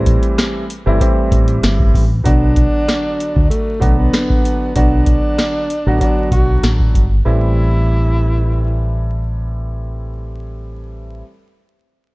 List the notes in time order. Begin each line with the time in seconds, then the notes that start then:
Already playing: A1 E3 G3 A3 C4 E4
0.06 kick, closed hi-hat
0.23 closed hi-hat
0.38 cross-stick, snare, closed hi-hat
0.70 closed hi-hat
0.86 G1 E3 G3 A3 C4 E4
1.00 E3 G3 A3 C4 E4, kick, closed hi-hat
1.31 A1, kick, closed hi-hat
1.48 closed hi-hat
1.63 G1, cross-stick, snare, closed hi-hat
1.80 kick
1.94 A1, kick, open hi-hat
2.24 B1 D3 F#3 B3 D4 F#4, kick, closed hi-hat
2.56 kick, closed hi-hat
2.88 cross-stick, snare, closed hi-hat
3.20 closed hi-hat
3.36 D2, kick
3.50 A3, closed hi-hat
3.80 B1 D3 F#3 B3 D4 F#4, kick, closed hi-hat
3.99 B3
4.14 cross-stick, snare, closed hi-hat
4.30 kick
4.45 closed hi-hat
4.75 B1 D3 F#3 B3 D4 F#4, kick, closed hi-hat
5.06 kick, closed hi-hat
5.38 cross-stick, snare, closed hi-hat
5.70 closed hi-hat
5.86 A1 D3 F#3 B3 D4 F#4
6.00 D3 F#3 B3 D4 F#4, kick, closed hi-hat
6.31 B1 F#4, kick, closed hi-hat
6.63 A1, cross-stick, snare, closed hi-hat
6.80 kick
6.94 G1, kick, closed hi-hat
7.25 A1 E3 G3 A3 C4 E4